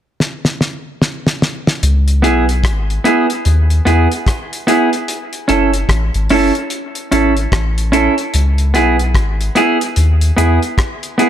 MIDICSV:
0, 0, Header, 1, 4, 480
1, 0, Start_track
1, 0, Key_signature, 4, "minor"
1, 0, Tempo, 814111
1, 1078, Time_signature, 4, 2, 24, 8
1, 6659, End_track
2, 0, Start_track
2, 0, Title_t, "Clean electric guitar"
2, 0, Program_c, 0, 27
2, 1311, Note_on_c, 0, 59, 72
2, 1316, Note_on_c, 0, 64, 85
2, 1321, Note_on_c, 0, 68, 93
2, 1439, Note_off_c, 0, 59, 0
2, 1442, Note_off_c, 0, 64, 0
2, 1444, Note_off_c, 0, 68, 0
2, 1794, Note_on_c, 0, 59, 87
2, 1800, Note_on_c, 0, 64, 91
2, 1806, Note_on_c, 0, 68, 94
2, 1920, Note_off_c, 0, 59, 0
2, 1923, Note_off_c, 0, 64, 0
2, 1926, Note_off_c, 0, 68, 0
2, 2272, Note_on_c, 0, 59, 74
2, 2278, Note_on_c, 0, 64, 84
2, 2283, Note_on_c, 0, 68, 91
2, 2399, Note_off_c, 0, 59, 0
2, 2402, Note_off_c, 0, 64, 0
2, 2405, Note_off_c, 0, 68, 0
2, 2754, Note_on_c, 0, 59, 88
2, 2758, Note_on_c, 0, 64, 92
2, 2765, Note_on_c, 0, 68, 90
2, 2879, Note_off_c, 0, 59, 0
2, 2882, Note_off_c, 0, 64, 0
2, 2885, Note_off_c, 0, 68, 0
2, 3230, Note_on_c, 0, 61, 76
2, 3238, Note_on_c, 0, 64, 79
2, 3239, Note_on_c, 0, 69, 79
2, 3358, Note_off_c, 0, 61, 0
2, 3362, Note_off_c, 0, 64, 0
2, 3362, Note_off_c, 0, 69, 0
2, 3717, Note_on_c, 0, 61, 101
2, 3720, Note_on_c, 0, 64, 108
2, 3728, Note_on_c, 0, 69, 93
2, 3841, Note_off_c, 0, 61, 0
2, 3842, Note_off_c, 0, 64, 0
2, 3846, Note_off_c, 0, 69, 0
2, 4195, Note_on_c, 0, 61, 78
2, 4199, Note_on_c, 0, 64, 80
2, 4204, Note_on_c, 0, 69, 75
2, 4320, Note_off_c, 0, 61, 0
2, 4322, Note_off_c, 0, 64, 0
2, 4324, Note_off_c, 0, 69, 0
2, 4670, Note_on_c, 0, 61, 86
2, 4675, Note_on_c, 0, 64, 93
2, 4679, Note_on_c, 0, 69, 94
2, 4797, Note_off_c, 0, 61, 0
2, 4799, Note_off_c, 0, 64, 0
2, 4802, Note_off_c, 0, 69, 0
2, 5152, Note_on_c, 0, 59, 85
2, 5161, Note_on_c, 0, 64, 91
2, 5163, Note_on_c, 0, 68, 101
2, 5278, Note_off_c, 0, 59, 0
2, 5283, Note_off_c, 0, 64, 0
2, 5284, Note_off_c, 0, 68, 0
2, 5632, Note_on_c, 0, 59, 87
2, 5638, Note_on_c, 0, 64, 97
2, 5644, Note_on_c, 0, 68, 115
2, 5758, Note_off_c, 0, 59, 0
2, 5761, Note_off_c, 0, 64, 0
2, 5764, Note_off_c, 0, 68, 0
2, 6111, Note_on_c, 0, 59, 80
2, 6117, Note_on_c, 0, 64, 74
2, 6120, Note_on_c, 0, 68, 84
2, 6238, Note_off_c, 0, 59, 0
2, 6241, Note_off_c, 0, 64, 0
2, 6242, Note_off_c, 0, 68, 0
2, 6591, Note_on_c, 0, 59, 88
2, 6596, Note_on_c, 0, 64, 74
2, 6601, Note_on_c, 0, 68, 93
2, 6659, Note_off_c, 0, 59, 0
2, 6659, Note_off_c, 0, 64, 0
2, 6659, Note_off_c, 0, 68, 0
2, 6659, End_track
3, 0, Start_track
3, 0, Title_t, "Sub bass"
3, 0, Program_c, 1, 38
3, 1079, Note_on_c, 1, 37, 105
3, 1321, Note_on_c, 1, 35, 83
3, 1330, Note_off_c, 1, 37, 0
3, 1557, Note_on_c, 1, 32, 98
3, 1566, Note_off_c, 1, 35, 0
3, 1763, Note_off_c, 1, 32, 0
3, 2038, Note_on_c, 1, 39, 93
3, 2244, Note_off_c, 1, 39, 0
3, 2278, Note_on_c, 1, 40, 85
3, 2403, Note_off_c, 1, 40, 0
3, 3240, Note_on_c, 1, 30, 95
3, 3445, Note_off_c, 1, 30, 0
3, 3473, Note_on_c, 1, 33, 97
3, 3600, Note_off_c, 1, 33, 0
3, 3625, Note_on_c, 1, 32, 96
3, 3704, Note_off_c, 1, 32, 0
3, 4200, Note_on_c, 1, 32, 82
3, 4405, Note_off_c, 1, 32, 0
3, 4435, Note_on_c, 1, 33, 93
3, 4768, Note_off_c, 1, 33, 0
3, 4919, Note_on_c, 1, 37, 104
3, 5157, Note_on_c, 1, 35, 85
3, 5166, Note_off_c, 1, 37, 0
3, 5394, Note_on_c, 1, 32, 91
3, 5403, Note_off_c, 1, 35, 0
3, 5601, Note_off_c, 1, 32, 0
3, 5877, Note_on_c, 1, 39, 92
3, 6083, Note_off_c, 1, 39, 0
3, 6120, Note_on_c, 1, 40, 82
3, 6244, Note_off_c, 1, 40, 0
3, 6659, End_track
4, 0, Start_track
4, 0, Title_t, "Drums"
4, 119, Note_on_c, 9, 38, 61
4, 178, Note_off_c, 9, 38, 0
4, 264, Note_on_c, 9, 38, 66
4, 323, Note_off_c, 9, 38, 0
4, 358, Note_on_c, 9, 38, 72
4, 417, Note_off_c, 9, 38, 0
4, 599, Note_on_c, 9, 38, 81
4, 658, Note_off_c, 9, 38, 0
4, 746, Note_on_c, 9, 38, 81
4, 805, Note_off_c, 9, 38, 0
4, 839, Note_on_c, 9, 38, 83
4, 898, Note_off_c, 9, 38, 0
4, 987, Note_on_c, 9, 38, 95
4, 1046, Note_off_c, 9, 38, 0
4, 1079, Note_on_c, 9, 42, 90
4, 1138, Note_off_c, 9, 42, 0
4, 1224, Note_on_c, 9, 42, 51
4, 1283, Note_off_c, 9, 42, 0
4, 1320, Note_on_c, 9, 42, 75
4, 1379, Note_off_c, 9, 42, 0
4, 1468, Note_on_c, 9, 42, 50
4, 1526, Note_off_c, 9, 42, 0
4, 1554, Note_on_c, 9, 36, 83
4, 1561, Note_on_c, 9, 37, 101
4, 1562, Note_on_c, 9, 42, 82
4, 1613, Note_off_c, 9, 36, 0
4, 1620, Note_off_c, 9, 37, 0
4, 1621, Note_off_c, 9, 42, 0
4, 1711, Note_on_c, 9, 42, 38
4, 1770, Note_off_c, 9, 42, 0
4, 1800, Note_on_c, 9, 42, 74
4, 1859, Note_off_c, 9, 42, 0
4, 1945, Note_on_c, 9, 42, 61
4, 2004, Note_off_c, 9, 42, 0
4, 2035, Note_on_c, 9, 42, 72
4, 2094, Note_off_c, 9, 42, 0
4, 2184, Note_on_c, 9, 42, 42
4, 2243, Note_off_c, 9, 42, 0
4, 2280, Note_on_c, 9, 42, 71
4, 2339, Note_off_c, 9, 42, 0
4, 2426, Note_on_c, 9, 42, 46
4, 2485, Note_off_c, 9, 42, 0
4, 2515, Note_on_c, 9, 36, 99
4, 2518, Note_on_c, 9, 42, 71
4, 2522, Note_on_c, 9, 37, 92
4, 2574, Note_off_c, 9, 36, 0
4, 2577, Note_off_c, 9, 42, 0
4, 2581, Note_off_c, 9, 37, 0
4, 2670, Note_on_c, 9, 42, 46
4, 2729, Note_off_c, 9, 42, 0
4, 2760, Note_on_c, 9, 42, 63
4, 2819, Note_off_c, 9, 42, 0
4, 2906, Note_on_c, 9, 42, 47
4, 2965, Note_off_c, 9, 42, 0
4, 2997, Note_on_c, 9, 42, 82
4, 3056, Note_off_c, 9, 42, 0
4, 3141, Note_on_c, 9, 42, 53
4, 3200, Note_off_c, 9, 42, 0
4, 3235, Note_on_c, 9, 42, 82
4, 3294, Note_off_c, 9, 42, 0
4, 3382, Note_on_c, 9, 42, 51
4, 3441, Note_off_c, 9, 42, 0
4, 3472, Note_on_c, 9, 36, 89
4, 3475, Note_on_c, 9, 37, 105
4, 3477, Note_on_c, 9, 42, 71
4, 3531, Note_off_c, 9, 36, 0
4, 3534, Note_off_c, 9, 37, 0
4, 3536, Note_off_c, 9, 42, 0
4, 3623, Note_on_c, 9, 42, 42
4, 3682, Note_off_c, 9, 42, 0
4, 3711, Note_on_c, 9, 46, 50
4, 3770, Note_off_c, 9, 46, 0
4, 3862, Note_on_c, 9, 42, 52
4, 3921, Note_off_c, 9, 42, 0
4, 3951, Note_on_c, 9, 42, 73
4, 4010, Note_off_c, 9, 42, 0
4, 4099, Note_on_c, 9, 42, 48
4, 4158, Note_off_c, 9, 42, 0
4, 4198, Note_on_c, 9, 42, 70
4, 4257, Note_off_c, 9, 42, 0
4, 4343, Note_on_c, 9, 42, 44
4, 4402, Note_off_c, 9, 42, 0
4, 4434, Note_on_c, 9, 36, 105
4, 4435, Note_on_c, 9, 42, 72
4, 4439, Note_on_c, 9, 37, 109
4, 4493, Note_off_c, 9, 36, 0
4, 4494, Note_off_c, 9, 42, 0
4, 4498, Note_off_c, 9, 37, 0
4, 4586, Note_on_c, 9, 42, 51
4, 4645, Note_off_c, 9, 42, 0
4, 4677, Note_on_c, 9, 42, 67
4, 4736, Note_off_c, 9, 42, 0
4, 4822, Note_on_c, 9, 42, 49
4, 4881, Note_off_c, 9, 42, 0
4, 4915, Note_on_c, 9, 42, 96
4, 4974, Note_off_c, 9, 42, 0
4, 5061, Note_on_c, 9, 42, 53
4, 5119, Note_off_c, 9, 42, 0
4, 5156, Note_on_c, 9, 42, 81
4, 5215, Note_off_c, 9, 42, 0
4, 5303, Note_on_c, 9, 42, 48
4, 5362, Note_off_c, 9, 42, 0
4, 5392, Note_on_c, 9, 36, 94
4, 5396, Note_on_c, 9, 37, 102
4, 5398, Note_on_c, 9, 42, 75
4, 5451, Note_off_c, 9, 36, 0
4, 5455, Note_off_c, 9, 37, 0
4, 5457, Note_off_c, 9, 42, 0
4, 5546, Note_on_c, 9, 42, 45
4, 5605, Note_off_c, 9, 42, 0
4, 5635, Note_on_c, 9, 42, 75
4, 5694, Note_off_c, 9, 42, 0
4, 5786, Note_on_c, 9, 42, 55
4, 5845, Note_off_c, 9, 42, 0
4, 5874, Note_on_c, 9, 42, 76
4, 5932, Note_off_c, 9, 42, 0
4, 6022, Note_on_c, 9, 42, 46
4, 6081, Note_off_c, 9, 42, 0
4, 6120, Note_on_c, 9, 42, 70
4, 6179, Note_off_c, 9, 42, 0
4, 6265, Note_on_c, 9, 42, 49
4, 6324, Note_off_c, 9, 42, 0
4, 6354, Note_on_c, 9, 36, 107
4, 6355, Note_on_c, 9, 42, 67
4, 6359, Note_on_c, 9, 37, 106
4, 6413, Note_off_c, 9, 36, 0
4, 6414, Note_off_c, 9, 42, 0
4, 6418, Note_off_c, 9, 37, 0
4, 6503, Note_on_c, 9, 42, 49
4, 6562, Note_off_c, 9, 42, 0
4, 6599, Note_on_c, 9, 42, 60
4, 6658, Note_off_c, 9, 42, 0
4, 6659, End_track
0, 0, End_of_file